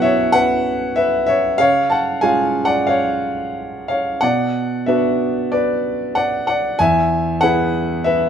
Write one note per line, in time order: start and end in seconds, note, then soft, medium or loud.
0.00 1.55 B2 medium
0.00 1.55 F#3 soft
0.00 1.55 B3 soft
0.00 1.55 E4 soft
0.00 0.34 B4 medium
0.00 0.32 C#5 medium
0.00 0.02 E5 medium
0.00 0.34 E5 medium
0.00 0.32 F#5 medium
0.00 1.61 G#5 loud
0.32 0.92 B4 medium
0.32 0.97 F#5 medium
0.96 1.26 B4 medium
0.96 1.25 E5 medium
1.26 1.57 C#5 medium
1.26 1.56 E5 medium
1.58 4.18 C#3 medium
1.58 1.89 C#5 medium
1.58 1.91 F5 loud
1.89 2.21 F#5 medium
1.89 2.23 A5 medium
2.21 4.18 G#3 soft
2.21 4.18 C#4 soft
2.21 4.18 F4 soft
2.21 2.63 F5 medium
2.21 2.66 G#5 medium
2.65 2.87 D5 medium
2.65 2.88 F#5 medium
2.87 3.86 C#5 medium
2.87 3.87 F5 medium
3.88 4.20 C#5 soft
3.88 4.23 F5 medium
4.21 6.75 B2 medium
4.21 4.84 D5 medium
4.21 4.83 F#5 medium
4.86 6.75 B3 soft
4.86 6.75 D4 soft
4.86 6.75 F#4 soft
4.86 5.48 B4 medium
4.86 5.53 E5 medium
5.52 6.13 B4 medium
5.52 6.16 D5 medium
6.15 6.46 D5 medium
6.15 6.45 F#5 medium
6.47 6.78 D5 medium
6.47 6.80 F#5 medium
6.79 8.29 E2 medium
6.79 7.39 E5 medium
6.79 7.43 G#5 medium
7.41 8.29 B3 soft
7.41 8.29 E4 soft
7.41 8.29 G#4 soft
7.41 8.02 B4 medium
7.41 8.06 F#5 medium
8.04 8.29 B4 medium
8.04 8.29 E5 medium